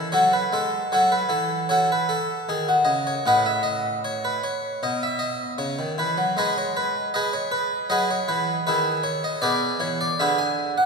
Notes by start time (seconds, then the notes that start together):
Already playing: E3
0.12 F#3 F#4 A4 C#5
0.33 B4
0.52 G#3 A4
0.92 F#3 F#4 A4 C#5
1.12 B4
1.29 E3 A4
1.69 F#4 A4 C#5
1.92 B4
2.09 A4
2.49 D#3 G#4
2.68 F#4
2.85 C#3 D#5
3.07 C#5
3.26 A2 B4 D#5 F#5
3.46 E5
3.63 D#5
4.04 C#5
4.25 B4
4.44 C#5
4.83 B2 D#5
5.03 E5
5.19 D#5
5.58 C#3 C#5
5.79 D#3
5.98 E3 B4
6.18 F#3
6.37 G#3 G#4 B4 D#5
6.58 C#5
6.77 B4
7.14 G#4 B4 D#5
7.33 C#5
7.52 B4
7.90 F#3 G#4 B4 D#5
8.11 C#5
8.28 E3 B4
8.67 D#3 E4 G#4 B4
9.03 C#5
9.24 D#5
9.42 B2 G#4 B4 D5
9.80 E3 C#5
10.01 D5
10.20 D3 G#4 B4 E5
10.38 G#5
10.78 F#5